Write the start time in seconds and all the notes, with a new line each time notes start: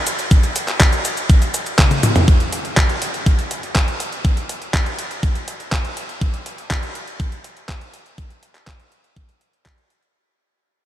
0.07 closed hi-hat, cabasa
0.19 closed hi-hat, cabasa
0.31 kick, closed hi-hat, cabasa
0.44 closed hi-hat, cabasa
0.56 closed hi-hat, cabasa
0.68 clap, closed hi-hat, cabasa
0.80 kick, clap, closed hi-hat, cabasa
0.93 closed hi-hat, cabasa
1.05 closed hi-hat, cabasa
1.17 closed hi-hat, cabasa
1.30 kick, closed hi-hat, cabasa
1.42 closed hi-hat, cabasa
1.54 closed hi-hat, cabasa
1.66 closed hi-hat, cabasa
1.79 kick, clap, closed hi-hat, high tom, cabasa
1.91 closed hi-hat, high tom, cabasa
2.03 closed hi-hat, mid tom, cabasa
2.16 closed hi-hat, mid tom, cabasa
2.28 kick, closed hi-hat
2.40 closed hi-hat
2.53 closed hi-hat
2.65 closed hi-hat
2.77 kick, clap, closed hi-hat
2.89 closed hi-hat
3.02 closed hi-hat
3.14 closed hi-hat
3.26 kick, closed hi-hat
3.39 closed hi-hat
3.51 closed hi-hat
3.63 closed hi-hat
3.76 kick, clap, closed hi-hat
3.88 closed hi-hat
4.00 closed hi-hat
4.12 closed hi-hat
4.25 kick, closed hi-hat
4.37 closed hi-hat
4.49 closed hi-hat
4.62 closed hi-hat
4.74 kick, clap, closed hi-hat
4.86 closed hi-hat
4.99 closed hi-hat
5.11 closed hi-hat
5.23 kick, closed hi-hat
5.35 closed hi-hat
5.48 closed hi-hat
5.60 closed hi-hat
5.72 kick, clap, closed hi-hat
5.85 closed hi-hat
5.97 closed hi-hat
6.09 closed hi-hat
6.21 kick, closed hi-hat
6.34 closed hi-hat
6.46 closed hi-hat
6.58 closed hi-hat
6.71 kick, clap, closed hi-hat
6.83 closed hi-hat
6.95 closed hi-hat
7.07 closed hi-hat
7.20 kick, closed hi-hat
7.32 closed hi-hat
7.44 closed hi-hat
7.57 closed hi-hat
7.69 kick, clap, closed hi-hat
7.81 closed hi-hat
7.94 closed hi-hat
8.06 closed hi-hat
8.18 kick, closed hi-hat
8.30 closed hi-hat
8.43 closed hi-hat
8.55 clap, closed hi-hat
8.67 kick, clap, closed hi-hat
8.80 closed hi-hat
8.92 closed hi-hat
9.04 closed hi-hat
9.16 kick, closed hi-hat
9.29 closed hi-hat
9.41 closed hi-hat
9.53 closed hi-hat
9.66 kick, clap, closed hi-hat
9.78 closed hi-hat
9.90 closed hi-hat
10.03 closed hi-hat